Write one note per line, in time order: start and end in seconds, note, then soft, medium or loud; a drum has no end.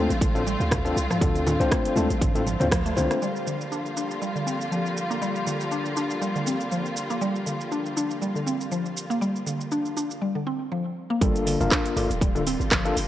0.00 3.18 D3 medium
0.00 3.18 F3 medium
0.00 3.18 A3 medium
0.00 3.18 C4 medium
0.00 3.18 F4 medium
0.10 0.57 A1 loud
0.10 closed hi-hat soft
0.10 shaker soft
0.21 0.35 D3 medium
0.21 kick loud
0.21 closed hi-hat medium
0.21 high conga loud
0.21 shaker soft
0.35 0.46 A2 medium
0.35 0.41 C4 medium
0.35 0.41 D4 medium
0.35 0.41 F4 medium
0.35 0.41 A4 loud
0.35 shaker soft
0.47 0.60 G3 medium
0.47 shaker medium
0.60 0.94 D2 medium
0.60 shaker soft
0.71 0.85 C3 medium
0.71 kick loud
0.71 cross-stick loud
0.71 closed hi-hat medium
0.71 mid tom medium
0.71 shaker medium
0.85 0.95 C4 loud
0.85 0.95 D4 medium
0.85 0.95 F4 medium
0.85 0.95 A4 loud
0.85 closed hi-hat soft
0.85 shaker soft
0.96 1.08 C2 medium
0.96 high conga medium
0.96 shaker medium
1.10 1.20 F3 loud
1.10 cross-stick medium
1.10 mid tom medium
1.10 shaker soft
1.21 1.57 D2 loud
1.21 1.34 D3 loud
1.21 1.57 C4 medium
1.21 1.57 D4 medium
1.21 1.57 F4 medium
1.21 1.57 A4 medium
1.21 kick loud
1.21 closed hi-hat medium
1.21 mid tom medium
1.21 shaker soft
1.36 closed hi-hat soft
1.36 shaker soft
1.47 1.60 A2 medium
1.47 low conga loud
1.47 shaker medium
1.60 1.70 C2 loud
1.60 1.94 C4 medium
1.60 1.94 D4 medium
1.60 1.94 F4 medium
1.60 1.94 C5 loud
1.60 closed hi-hat soft
1.60 high conga medium
1.60 shaker soft
1.71 1.85 A3 medium
1.71 kick loud
1.71 cross-stick loud
1.71 closed hi-hat medium
1.71 shaker medium
1.85 closed hi-hat soft
1.85 shaker soft
1.96 2.08 D2 loud
1.96 2.09 A3 medium
1.96 2.08 C4 medium
1.96 2.08 D4 medium
1.96 2.08 F4 medium
1.96 2.08 A4 medium
1.96 high conga loud
1.96 shaker medium
2.10 2.57 A1 loud
2.10 closed hi-hat soft
2.10 shaker soft
2.21 2.35 D3 medium
2.21 kick loud
2.21 closed hi-hat medium
2.21 mid tom medium
2.21 shaker medium
2.35 2.46 A2 medium
2.35 2.41 C4 medium
2.35 2.41 D4 medium
2.35 2.41 F4 medium
2.35 2.41 A4 loud
2.35 closed hi-hat soft
2.35 high conga medium
2.35 shaker soft
2.47 2.54 F3 medium
2.47 mid tom medium
2.47 shaker medium
2.60 2.94 D2 medium
2.60 2.71 A2 loud
2.60 2.66 C4 medium
2.60 2.66 D4 medium
2.60 2.66 F4 medium
2.60 2.66 C5 loud
2.60 closed hi-hat soft
2.60 low conga medium
2.60 shaker soft
2.71 2.79 F3 loud
2.71 kick loud
2.71 cross-stick loud
2.71 closed hi-hat medium
2.71 shaker medium
2.86 2.96 A3 medium
2.86 closed hi-hat soft
2.86 high conga medium
2.86 shaker soft
2.95 3.08 C2 loud
2.95 3.19 C4 medium
2.95 3.19 D4 medium
2.95 3.19 F4 medium
2.95 3.19 C5 medium
2.95 high conga medium
2.95 low conga loud
2.95 shaker medium
3.11 3.21 A3 medium
3.11 cross-stick medium
3.11 closed hi-hat soft
3.11 shaker soft
3.21 10.18 D3 medium
3.21 10.17 F3 medium
3.21 10.17 G3 medium
3.21 3.34 G3 loud
3.21 10.18 A#3 medium
3.21 10.17 F4 medium
3.21 shaker soft
3.36 shaker soft
3.47 3.60 D3 medium
3.47 shaker medium
3.61 shaker soft
3.72 3.85 D4 medium
3.72 shaker medium
3.86 shaker soft
3.97 4.09 D4 medium
3.97 shaker medium
4.11 shaker soft
4.22 4.35 G3 medium
4.22 shaker soft
4.35 4.46 D3 medium
4.35 shaker soft
4.47 4.60 C4 medium
4.47 shaker medium
4.61 shaker soft
4.71 4.85 F3 medium
4.71 shaker medium
4.86 shaker soft
4.97 shaker medium
5.10 5.20 A#3 loud
5.10 shaker soft
5.22 5.34 G3 loud
5.22 shaker soft
5.36 shaker soft
5.46 5.60 D3 medium
5.46 shaker medium
5.61 shaker soft
5.71 5.85 D4 medium
5.71 shaker medium
5.86 shaker soft
5.96 6.09 D4 medium
5.96 shaker medium
6.10 shaker soft
6.21 6.35 G3 medium
6.21 shaker medium
6.35 6.46 D3 medium
6.35 shaker soft
6.47 6.60 C4 medium
6.47 shaker medium
6.61 shaker soft
6.72 6.85 F3 medium
6.72 shaker medium
6.86 shaker soft
6.97 shaker medium
7.10 7.20 A#3 loud
7.10 shaker soft
7.21 7.34 G3 loud
7.21 shaker medium
7.36 shaker soft
7.46 7.60 D3 medium
7.46 shaker medium
7.61 shaker soft
7.72 7.85 D4 medium
7.72 shaker medium
7.86 shaker soft
7.97 8.09 D4 medium
7.97 shaker medium
8.11 shaker soft
8.22 8.35 G3 medium
8.22 shaker medium
8.35 8.46 D3 medium
8.35 shaker soft
8.46 8.60 C4 medium
8.46 shaker medium
8.61 shaker soft
8.72 8.85 F3 medium
8.72 shaker medium
8.86 shaker soft
8.97 shaker medium
9.10 9.20 A#3 loud
9.10 shaker soft
9.21 9.34 G3 loud
9.21 shaker medium
9.36 shaker soft
9.46 9.60 D3 medium
9.46 shaker medium
9.61 shaker soft
9.72 9.85 D4 medium
9.72 shaker medium
9.85 shaker soft
9.97 10.09 D4 medium
9.97 shaker medium
10.11 shaker soft
10.22 10.35 G3 medium
10.35 10.46 D3 medium
10.47 10.60 C4 medium
10.72 10.85 F3 medium
11.10 11.20 A#3 loud
11.21 11.57 G1 loud
11.21 13.08 D3 medium
11.21 13.08 F3 medium
11.21 11.34 G3 loud
11.21 13.08 G3 medium
11.21 11.57 A#3 medium
11.21 13.08 A#3 medium
11.21 11.57 D4 medium
11.21 13.08 F4 medium
11.21 11.57 F4 medium
11.21 11.57 A4 medium
11.21 kick loud
11.21 closed hi-hat medium
11.21 shaker medium
11.36 closed hi-hat soft
11.36 shaker soft
11.46 11.60 D3 medium
11.46 open hi-hat loud
11.46 shaker medium
11.60 11.70 F1 loud
11.60 11.94 A#3 medium
11.60 11.94 D4 medium
11.60 11.94 F4 medium
11.60 11.94 A#4 loud
11.60 mid tom medium
11.60 shaker soft
11.71 11.85 D4 medium
11.71 kick loud
11.71 cross-stick loud
11.71 clap loud
11.71 closed hi-hat medium
11.71 shaker medium
11.86 closed hi-hat soft
11.86 shaker soft
11.96 12.08 G1 loud
11.96 12.09 A#3 medium
11.96 12.09 D4 medium
11.96 12.09 F4 medium
11.96 12.09 A4 medium
11.96 mid tom medium
11.96 open hi-hat medium
11.96 shaker medium
12.10 12.57 D1 loud
12.10 closed hi-hat soft
12.10 shaker soft
12.21 12.35 G3 medium
12.21 kick loud
12.21 closed hi-hat medium
12.21 shaker medium
12.35 12.46 D3 medium
12.35 12.41 A#3 medium
12.35 12.41 D4 medium
12.35 12.41 F4 medium
12.35 12.41 A4 loud
12.35 closed hi-hat soft
12.35 shaker soft
12.47 12.60 C4 medium
12.47 open hi-hat medium
12.47 shaker medium
12.60 12.94 G1 loud
12.60 shaker soft
12.71 12.85 F3 medium
12.71 kick loud
12.71 cross-stick loud
12.71 clap loud
12.71 closed hi-hat medium
12.71 shaker medium
12.85 12.95 A#3 loud
12.85 12.95 D4 medium
12.85 12.95 F4 medium
12.85 12.95 A4 loud
12.85 closed hi-hat soft
12.85 shaker soft
12.97 13.08 F1 medium
12.97 open hi-hat loud
12.97 shaker medium